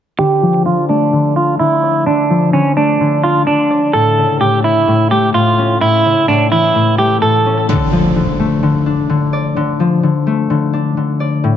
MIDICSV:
0, 0, Header, 1, 4, 480
1, 0, Start_track
1, 0, Key_signature, -1, "minor"
1, 0, Tempo, 468750
1, 194, Time_signature, 4, 2, 24, 8
1, 11845, End_track
2, 0, Start_track
2, 0, Title_t, "Clean electric guitar"
2, 0, Program_c, 0, 27
2, 191, Note_on_c, 0, 67, 116
2, 643, Note_off_c, 0, 67, 0
2, 674, Note_on_c, 0, 65, 76
2, 860, Note_off_c, 0, 65, 0
2, 914, Note_on_c, 0, 62, 82
2, 1365, Note_off_c, 0, 62, 0
2, 1394, Note_on_c, 0, 65, 69
2, 1580, Note_off_c, 0, 65, 0
2, 1633, Note_on_c, 0, 64, 79
2, 2084, Note_off_c, 0, 64, 0
2, 2114, Note_on_c, 0, 62, 86
2, 2565, Note_off_c, 0, 62, 0
2, 2594, Note_on_c, 0, 61, 80
2, 2780, Note_off_c, 0, 61, 0
2, 2834, Note_on_c, 0, 62, 80
2, 3285, Note_off_c, 0, 62, 0
2, 3312, Note_on_c, 0, 65, 75
2, 3499, Note_off_c, 0, 65, 0
2, 3551, Note_on_c, 0, 62, 78
2, 4004, Note_off_c, 0, 62, 0
2, 4029, Note_on_c, 0, 69, 100
2, 4482, Note_off_c, 0, 69, 0
2, 4513, Note_on_c, 0, 67, 76
2, 4699, Note_off_c, 0, 67, 0
2, 4754, Note_on_c, 0, 64, 81
2, 5205, Note_off_c, 0, 64, 0
2, 5233, Note_on_c, 0, 67, 64
2, 5419, Note_off_c, 0, 67, 0
2, 5472, Note_on_c, 0, 65, 82
2, 5924, Note_off_c, 0, 65, 0
2, 5953, Note_on_c, 0, 64, 100
2, 6405, Note_off_c, 0, 64, 0
2, 6434, Note_on_c, 0, 62, 85
2, 6620, Note_off_c, 0, 62, 0
2, 6673, Note_on_c, 0, 64, 78
2, 7125, Note_off_c, 0, 64, 0
2, 7152, Note_on_c, 0, 67, 73
2, 7339, Note_off_c, 0, 67, 0
2, 7393, Note_on_c, 0, 69, 82
2, 7844, Note_off_c, 0, 69, 0
2, 11845, End_track
3, 0, Start_track
3, 0, Title_t, "Harp"
3, 0, Program_c, 1, 46
3, 193, Note_on_c, 1, 50, 94
3, 433, Note_on_c, 1, 53, 80
3, 662, Note_off_c, 1, 50, 0
3, 675, Note_on_c, 1, 50, 76
3, 725, Note_off_c, 1, 53, 0
3, 914, Note_on_c, 1, 57, 81
3, 1141, Note_off_c, 1, 50, 0
3, 1154, Note_on_c, 1, 50, 86
3, 1394, Note_on_c, 1, 62, 79
3, 1621, Note_off_c, 1, 50, 0
3, 1633, Note_on_c, 1, 50, 86
3, 1874, Note_on_c, 1, 74, 82
3, 2102, Note_off_c, 1, 50, 0
3, 2114, Note_on_c, 1, 50, 93
3, 2355, Note_on_c, 1, 53, 79
3, 2581, Note_off_c, 1, 50, 0
3, 2593, Note_on_c, 1, 50, 75
3, 2645, Note_off_c, 1, 53, 0
3, 2830, Note_off_c, 1, 57, 0
3, 2834, Note_on_c, 1, 57, 79
3, 3063, Note_off_c, 1, 50, 0
3, 3075, Note_on_c, 1, 50, 91
3, 3308, Note_off_c, 1, 62, 0
3, 3312, Note_on_c, 1, 62, 82
3, 3543, Note_off_c, 1, 50, 0
3, 3556, Note_on_c, 1, 50, 76
3, 3765, Note_off_c, 1, 74, 0
3, 3790, Note_on_c, 1, 74, 83
3, 4032, Note_on_c, 1, 45, 89
3, 4085, Note_off_c, 1, 50, 0
3, 4275, Note_on_c, 1, 49, 78
3, 4325, Note_off_c, 1, 45, 0
3, 4337, Note_off_c, 1, 62, 0
3, 4337, Note_off_c, 1, 74, 0
3, 4510, Note_on_c, 1, 45, 75
3, 4565, Note_off_c, 1, 49, 0
3, 4980, Note_off_c, 1, 45, 0
3, 4992, Note_on_c, 1, 45, 84
3, 5230, Note_off_c, 1, 57, 0
3, 5234, Note_on_c, 1, 57, 86
3, 5458, Note_off_c, 1, 45, 0
3, 5471, Note_on_c, 1, 45, 84
3, 5714, Note_on_c, 1, 61, 95
3, 5940, Note_off_c, 1, 45, 0
3, 5953, Note_on_c, 1, 45, 90
3, 6193, Note_on_c, 1, 49, 83
3, 6245, Note_off_c, 1, 45, 0
3, 6435, Note_on_c, 1, 45, 82
3, 6485, Note_off_c, 1, 49, 0
3, 6676, Note_on_c, 1, 52, 80
3, 6901, Note_off_c, 1, 45, 0
3, 6913, Note_on_c, 1, 45, 80
3, 7150, Note_off_c, 1, 57, 0
3, 7154, Note_on_c, 1, 57, 81
3, 7383, Note_off_c, 1, 45, 0
3, 7395, Note_on_c, 1, 45, 84
3, 7633, Note_off_c, 1, 61, 0
3, 7637, Note_on_c, 1, 61, 83
3, 7874, Note_on_c, 1, 50, 102
3, 7925, Note_off_c, 1, 45, 0
3, 7925, Note_off_c, 1, 52, 0
3, 7936, Note_off_c, 1, 61, 0
3, 8113, Note_on_c, 1, 53, 81
3, 8344, Note_off_c, 1, 50, 0
3, 8356, Note_on_c, 1, 50, 77
3, 8405, Note_off_c, 1, 53, 0
3, 8591, Note_off_c, 1, 57, 0
3, 8595, Note_on_c, 1, 57, 84
3, 8822, Note_off_c, 1, 50, 0
3, 8834, Note_on_c, 1, 50, 90
3, 9073, Note_on_c, 1, 62, 83
3, 9300, Note_off_c, 1, 50, 0
3, 9312, Note_on_c, 1, 50, 94
3, 9552, Note_on_c, 1, 74, 87
3, 9781, Note_off_c, 1, 50, 0
3, 9793, Note_on_c, 1, 50, 99
3, 10033, Note_on_c, 1, 53, 81
3, 10260, Note_off_c, 1, 50, 0
3, 10272, Note_on_c, 1, 50, 78
3, 10325, Note_off_c, 1, 53, 0
3, 10509, Note_off_c, 1, 57, 0
3, 10513, Note_on_c, 1, 57, 84
3, 10739, Note_off_c, 1, 50, 0
3, 10752, Note_on_c, 1, 50, 94
3, 10987, Note_off_c, 1, 62, 0
3, 10991, Note_on_c, 1, 62, 88
3, 11222, Note_off_c, 1, 50, 0
3, 11234, Note_on_c, 1, 50, 77
3, 11443, Note_off_c, 1, 74, 0
3, 11470, Note_on_c, 1, 74, 83
3, 11711, Note_on_c, 1, 45, 93
3, 11765, Note_off_c, 1, 50, 0
3, 11845, Note_off_c, 1, 45, 0
3, 11845, Note_off_c, 1, 57, 0
3, 11845, Note_off_c, 1, 62, 0
3, 11845, Note_off_c, 1, 74, 0
3, 11845, End_track
4, 0, Start_track
4, 0, Title_t, "Impact"
4, 0, Program_c, 2, 103
4, 7874, Note_on_c, 2, 60, 84
4, 9794, Note_off_c, 2, 60, 0
4, 11845, End_track
0, 0, End_of_file